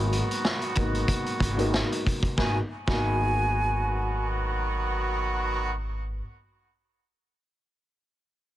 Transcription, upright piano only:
0, 0, Header, 1, 2, 480
1, 0, Start_track
1, 0, Key_signature, 5, "minor"
1, 0, Tempo, 645161
1, 1768, Time_signature, 4, 2, 24, 8
1, 6369, End_track
2, 0, Start_track
2, 0, Title_t, "Upright piano"
2, 0, Program_c, 0, 0
2, 0, Note_on_c, 0, 44, 102
2, 0, Note_on_c, 0, 54, 96
2, 0, Note_on_c, 0, 58, 83
2, 0, Note_on_c, 0, 59, 83
2, 0, Note_on_c, 0, 63, 102
2, 513, Note_off_c, 0, 44, 0
2, 516, Note_off_c, 0, 54, 0
2, 518, Note_off_c, 0, 58, 0
2, 520, Note_off_c, 0, 59, 0
2, 523, Note_off_c, 0, 63, 0
2, 563, Note_on_c, 0, 44, 96
2, 568, Note_on_c, 0, 54, 89
2, 573, Note_on_c, 0, 58, 88
2, 578, Note_on_c, 0, 59, 90
2, 583, Note_on_c, 0, 63, 108
2, 1124, Note_off_c, 0, 44, 0
2, 1127, Note_off_c, 0, 54, 0
2, 1129, Note_off_c, 0, 58, 0
2, 1132, Note_off_c, 0, 59, 0
2, 1134, Note_off_c, 0, 63, 0
2, 1168, Note_on_c, 0, 44, 89
2, 1172, Note_on_c, 0, 54, 88
2, 1177, Note_on_c, 0, 58, 85
2, 1182, Note_on_c, 0, 59, 84
2, 1187, Note_on_c, 0, 63, 105
2, 1719, Note_off_c, 0, 44, 0
2, 1721, Note_off_c, 0, 54, 0
2, 1723, Note_off_c, 0, 58, 0
2, 1726, Note_off_c, 0, 59, 0
2, 1729, Note_off_c, 0, 63, 0
2, 1766, Note_on_c, 0, 54, 88
2, 1769, Note_on_c, 0, 58, 83
2, 1771, Note_on_c, 0, 59, 82
2, 1773, Note_on_c, 0, 63, 96
2, 1909, Note_off_c, 0, 54, 0
2, 1911, Note_off_c, 0, 58, 0
2, 1912, Note_off_c, 0, 59, 0
2, 1913, Note_off_c, 0, 63, 0
2, 2139, Note_on_c, 0, 54, 86
2, 2140, Note_on_c, 0, 58, 79
2, 2143, Note_on_c, 0, 59, 78
2, 2146, Note_on_c, 0, 63, 97
2, 4610, Note_off_c, 0, 54, 0
2, 4611, Note_off_c, 0, 58, 0
2, 4614, Note_off_c, 0, 59, 0
2, 4617, Note_off_c, 0, 63, 0
2, 6369, End_track
0, 0, End_of_file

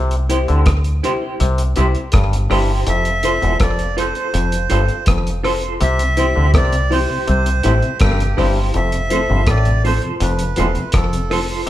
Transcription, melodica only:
0, 0, Header, 1, 2, 480
1, 0, Start_track
1, 0, Tempo, 733496
1, 1879, Time_signature, 4, 2, 24, 8
1, 7653, End_track
2, 0, Start_track
2, 0, Title_t, "Melodica"
2, 0, Program_c, 0, 22
2, 1890, Note_on_c, 0, 76, 117
2, 2339, Note_off_c, 0, 76, 0
2, 2374, Note_on_c, 0, 74, 89
2, 2591, Note_off_c, 0, 74, 0
2, 2610, Note_on_c, 0, 72, 83
2, 3299, Note_off_c, 0, 72, 0
2, 3811, Note_on_c, 0, 76, 117
2, 4260, Note_off_c, 0, 76, 0
2, 4302, Note_on_c, 0, 74, 101
2, 4535, Note_on_c, 0, 72, 88
2, 4538, Note_off_c, 0, 74, 0
2, 4766, Note_off_c, 0, 72, 0
2, 4776, Note_on_c, 0, 72, 96
2, 5222, Note_off_c, 0, 72, 0
2, 5252, Note_on_c, 0, 67, 88
2, 5583, Note_off_c, 0, 67, 0
2, 5735, Note_on_c, 0, 76, 112
2, 6214, Note_on_c, 0, 74, 94
2, 6222, Note_off_c, 0, 76, 0
2, 6430, Note_off_c, 0, 74, 0
2, 6452, Note_on_c, 0, 72, 74
2, 6557, Note_off_c, 0, 72, 0
2, 6692, Note_on_c, 0, 71, 85
2, 7139, Note_off_c, 0, 71, 0
2, 7171, Note_on_c, 0, 69, 80
2, 7502, Note_off_c, 0, 69, 0
2, 7653, End_track
0, 0, End_of_file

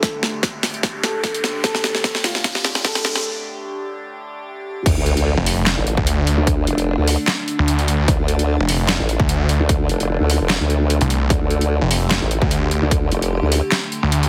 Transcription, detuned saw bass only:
0, 0, Header, 1, 2, 480
1, 0, Start_track
1, 0, Key_signature, -1, "minor"
1, 0, Tempo, 402685
1, 33, Time_signature, 4, 2, 24, 8
1, 17032, End_track
2, 0, Start_track
2, 0, Title_t, "Detuned saw bass"
2, 0, Program_c, 0, 39
2, 6402, Note_on_c, 0, 29, 94
2, 6861, Note_off_c, 0, 29, 0
2, 7121, Note_on_c, 0, 38, 95
2, 7581, Note_off_c, 0, 38, 0
2, 9043, Note_on_c, 0, 38, 97
2, 9502, Note_off_c, 0, 38, 0
2, 9522, Note_on_c, 0, 38, 101
2, 9615, Note_off_c, 0, 38, 0
2, 10242, Note_on_c, 0, 29, 97
2, 10701, Note_off_c, 0, 29, 0
2, 10962, Note_on_c, 0, 38, 97
2, 11421, Note_off_c, 0, 38, 0
2, 13122, Note_on_c, 0, 36, 100
2, 13455, Note_off_c, 0, 36, 0
2, 14082, Note_on_c, 0, 29, 97
2, 14541, Note_off_c, 0, 29, 0
2, 14800, Note_on_c, 0, 38, 95
2, 15260, Note_off_c, 0, 38, 0
2, 16723, Note_on_c, 0, 38, 97
2, 17032, Note_off_c, 0, 38, 0
2, 17032, End_track
0, 0, End_of_file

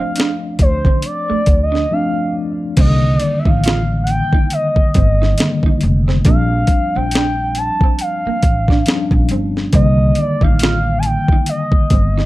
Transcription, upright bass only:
0, 0, Header, 1, 3, 480
1, 0, Start_track
1, 0, Tempo, 869565
1, 1529, Time_signature, 4, 2, 24, 8
1, 6765, End_track
2, 0, Start_track
2, 0, Title_t, "Upright bass"
2, 0, Program_c, 0, 32
2, 332, Note_on_c, 0, 38, 93
2, 449, Note_off_c, 0, 38, 0
2, 473, Note_on_c, 0, 50, 97
2, 556, Note_off_c, 0, 50, 0
2, 816, Note_on_c, 0, 38, 83
2, 1016, Note_off_c, 0, 38, 0
2, 1534, Note_on_c, 0, 36, 114
2, 1735, Note_off_c, 0, 36, 0
2, 1912, Note_on_c, 0, 33, 89
2, 2316, Note_off_c, 0, 33, 0
2, 2738, Note_on_c, 0, 31, 99
2, 2937, Note_off_c, 0, 31, 0
2, 3218, Note_on_c, 0, 29, 96
2, 3417, Note_off_c, 0, 29, 0
2, 3456, Note_on_c, 0, 34, 126
2, 3656, Note_off_c, 0, 34, 0
2, 3839, Note_on_c, 0, 34, 76
2, 4240, Note_off_c, 0, 34, 0
2, 4658, Note_on_c, 0, 33, 86
2, 4857, Note_off_c, 0, 33, 0
2, 5032, Note_on_c, 0, 34, 100
2, 5115, Note_off_c, 0, 34, 0
2, 5137, Note_on_c, 0, 31, 86
2, 5337, Note_off_c, 0, 31, 0
2, 5375, Note_on_c, 0, 36, 114
2, 5575, Note_off_c, 0, 36, 0
2, 5752, Note_on_c, 0, 33, 98
2, 6156, Note_off_c, 0, 33, 0
2, 6576, Note_on_c, 0, 31, 86
2, 6765, Note_off_c, 0, 31, 0
2, 6765, End_track
3, 0, Start_track
3, 0, Title_t, "Muted upright bass strokes"
3, 719, Note_on_c, 9, 29, 46
3, 774, Note_off_c, 9, 29, 0
3, 2632, Note_on_c, 9, 29, 43
3, 2688, Note_off_c, 9, 29, 0
3, 4558, Note_on_c, 9, 29, 49
3, 4613, Note_off_c, 9, 29, 0
3, 6472, Note_on_c, 9, 29, 47
3, 6527, Note_off_c, 9, 29, 0
3, 6765, End_track
0, 0, End_of_file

